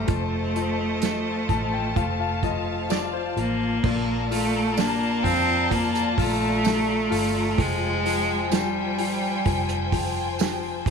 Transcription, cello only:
0.00 2.90 A3 medium
3.38 4.27 A#3 medium
4.31 4.79 A3 loud
4.78 5.24 A#3 medium
5.23 5.72 C4 loud
5.71 6.19 A#3 loud
6.18 7.61 A3 loud
7.60 8.55 G#3 loud
8.53 9.93 G3 medium

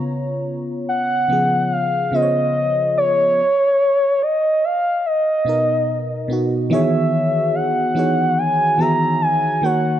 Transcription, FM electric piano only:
0.00 0.96 C#3 medium
0.00 0.97 B3 medium
0.00 0.98 F4 medium
0.00 0.98 C#5 loud
1.28 1.84 C#3 medium
1.28 1.85 F3 medium
1.28 1.85 B3 medium
1.33 1.86 G#4 medium
2.12 3.22 C#3 medium
2.12 3.23 B3 medium
2.12 3.23 F4 medium
2.16 2.22 C5 medium
2.22 3.27 C#5 medium
5.45 6.01 B2 medium
5.45 6.01 B3 medium
5.45 6.02 D#4 medium
5.49 6.03 A#4 medium
6.28 6.57 B2 medium
6.28 6.58 B3 medium
6.28 6.59 D#4 medium
6.33 6.59 F#4 medium
6.70 7.53 D#3 medium
6.70 7.52 E3 medium
6.70 7.52 B3 medium
6.70 7.53 F#4 medium
6.70 7.54 G#4 medium
6.74 7.54 C#5 loud
7.95 8.51 E3 medium
7.95 8.51 B3 medium
7.95 8.52 D#4 medium
7.95 8.52 F#4 medium
7.95 8.52 G#4 medium
7.99 8.53 C#5 medium
8.78 9.60 D#3 medium
8.78 9.60 E3 medium
8.78 9.61 B3 medium
8.78 9.62 F#4 medium
8.78 9.62 G#4 medium
8.82 9.62 E5 medium
9.62 10.00 D#3 medium
9.62 10.00 A#3 medium
9.62 10.00 F#4 medium
9.66 10.00 C#5 medium

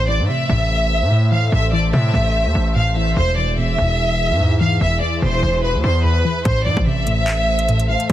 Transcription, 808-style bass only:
0.00 0.21 A1 loud
0.19 0.28 A2 loud
0.49 1.03 A1 loud
1.01 1.50 A2 loud
1.52 1.92 A1 loud
1.93 2.13 A2 loud
2.14 2.47 A1 loud
2.45 2.54 E2 loud
2.55 3.14 A1 loud
3.17 3.76 E1 loud
3.78 4.32 E1 loud
4.30 4.78 G#2 loud
4.81 5.01 E1 loud
5.22 5.42 E1 loud
5.43 5.76 E1 loud
5.74 5.83 E2 loud
5.84 6.23 E2 loud
6.45 6.67 A1 loud
6.66 6.76 A2 loud
6.77 7.96 A1 loud

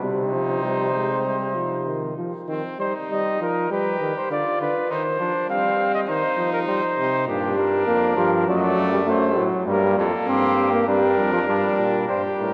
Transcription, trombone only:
0.00 0.34 G3 medium
0.33 0.65 F3 medium
0.63 0.94 G3 medium
0.95 1.26 G#3 medium
1.25 1.56 G3 medium
1.55 1.88 F3 medium
1.87 2.17 D#3 medium
2.18 2.32 F3 medium
2.48 2.62 D#3 medium
2.79 2.93 G3 medium
3.10 3.40 G3 medium
3.41 3.70 F3 medium
3.71 4.00 G3 medium
4.00 4.14 D#3 medium
4.30 4.44 D3 medium
4.60 4.74 D3 medium
4.90 5.19 D#3 medium
5.20 5.33 F3 medium
5.48 6.07 G3 medium
6.09 6.22 D#3 medium
6.37 6.67 F3 medium
6.68 6.81 G3 medium
6.98 7.29 C3 medium
7.27 7.56 A#2 medium
7.57 7.86 G3 medium
7.87 8.16 A#3 loud
8.16 8.46 F3 loud
8.48 8.91 F#3 loud
8.92 8.99 G3 loud
9.07 9.38 A3 loud
9.36 9.66 F#3 loud
9.67 10.05 G3 loud
10.27 10.69 C4 loud
10.72 10.87 A#3 loud
10.88 11.32 G3 loud
11.33 11.40 F3 medium
11.48 12.08 G3 loud
12.09 12.54 G3 medium

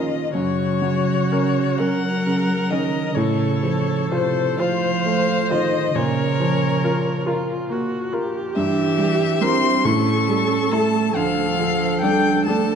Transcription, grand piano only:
0.00 0.31 A#2 soft
0.00 0.37 F3 soft
0.00 0.16 A#3 soft
0.00 0.37 C#4 soft
0.00 0.38 A#4 soft
0.35 3.12 F#2 soft
0.82 1.61 F#3 soft
1.31 1.76 C#4 soft
1.31 1.76 A#4 soft
1.79 2.22 C#4 soft
1.79 2.22 A#4 soft
2.27 2.98 C#3 soft
2.71 3.13 C#4 soft
2.71 3.13 A#4 soft
3.16 5.93 A2 medium
3.63 4.41 F3 soft
4.12 4.56 F4 soft
4.12 4.56 C5 soft
4.60 5.02 F4 soft
4.60 5.02 C5 medium
5.06 5.78 A3 soft
5.51 5.92 F4 soft
5.51 5.92 C5 soft
5.96 8.52 A#2 medium
6.40 7.10 F3 soft
6.84 7.24 F4 soft
6.84 7.24 A#4 medium
7.26 7.66 F4 medium
7.26 7.67 A#4 medium
7.70 8.39 A#3 soft
8.13 8.52 F4 soft
8.13 8.52 A#4 medium
8.56 9.80 G2 medium
8.99 9.67 G3 soft
9.42 9.81 E4 soft
9.42 9.81 A#4 medium
9.85 11.12 A2 medium
10.29 10.98 G3 soft
10.72 11.12 E4 soft
10.72 11.12 A4 medium
11.16 12.75 D2 medium
11.60 12.29 F3 soft
12.03 12.43 D4 soft
12.03 12.43 A4 soft
12.48 12.75 D4 soft
12.48 12.75 A4 medium

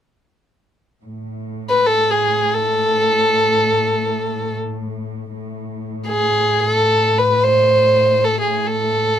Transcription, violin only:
1.69 1.88 B4 medium
1.86 2.12 A4 medium
2.10 2.56 G#4 medium
2.54 4.55 A4 medium
6.08 6.59 G#4 medium
6.59 6.70 G#4 medium
6.70 7.19 A4 medium
7.18 7.44 B4 medium
7.43 8.26 C5 medium
8.25 8.40 A4 medium
8.41 8.68 G#4 medium
8.67 9.19 A4 medium

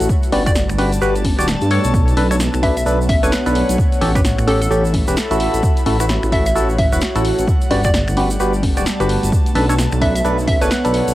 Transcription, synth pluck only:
0.32 0.41 D5 medium
0.46 0.52 D5 medium
2.63 2.72 E5 medium
2.77 2.83 E5 medium
3.09 3.20 E5 medium
3.23 3.39 B4 loud
4.48 4.57 A4 medium
4.62 4.67 A4 medium
6.32 6.41 E5 medium
6.46 6.52 E5 medium
6.78 6.90 E5 medium
7.71 7.80 D5 medium
7.85 7.91 D5 medium
10.02 10.11 E5 medium
10.16 10.21 E5 medium
10.48 10.59 E5 medium
10.62 10.78 B4 medium

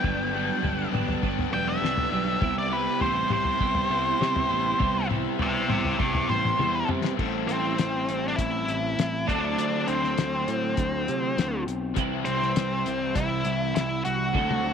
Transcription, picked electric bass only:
0.05 0.49 G1 loud
0.63 0.86 G1 medium
0.93 1.15 G1 medium
1.24 1.46 G1 loud
1.53 1.76 E1 loud
1.82 2.05 C2 medium
2.12 2.35 B1 medium
2.42 2.87 C2 loud
3.01 3.24 A1 medium
3.32 3.54 C2 medium
3.61 3.83 C2 loud
3.90 4.13 C2 medium
4.21 4.43 C3 medium
4.50 4.73 A1 medium
4.81 5.25 C2 loud
5.41 5.63 C2 loud
5.71 5.93 C2 medium
6.00 6.22 C2 loud
6.30 6.52 A1 medium
6.60 6.82 E2 medium
6.89 7.12 C3 medium
7.19 7.45 A1 medium
7.49 7.75 A1 medium
7.80 8.05 A1 medium
8.08 8.34 A1 medium
8.39 8.65 A1 loud
8.68 8.94 A1 medium
8.98 9.24 A1 medium
9.29 9.54 D2 medium
9.58 9.84 D2 medium
9.88 10.14 D2 medium
10.18 10.44 D2 medium
10.48 10.74 A2 medium
10.78 11.04 D2 medium
11.09 11.34 C3 medium
11.37 11.63 D2 medium
11.67 11.93 B1 medium
11.97 12.23 C2 loud
12.27 12.53 C2 loud
12.56 12.82 C2 medium
12.87 13.12 C2 medium
13.16 13.42 C2 medium
13.46 13.71 C2 loud
13.75 14.01 C2 medium
14.06 14.31 C2 medium
14.35 14.61 D2 loud
14.65 14.73 D2 medium

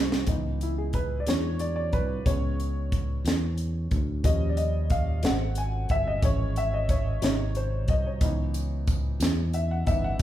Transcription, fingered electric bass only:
0.00 0.25 C2 medium
0.28 1.23 C#2 medium
1.27 1.95 E2 medium
1.93 2.23 C2 medium
2.26 3.21 C#2 medium
3.24 3.87 E2 medium
3.92 4.22 D2 medium
4.24 5.25 D#2 medium
5.23 5.86 G#1 medium
5.90 6.20 G1 medium
6.23 7.18 G#1 loud
7.22 7.89 G#1 medium
7.89 8.19 C2 medium
8.21 9.16 C#2 medium
9.20 9.82 E2 medium
9.88 10.17 G1 medium

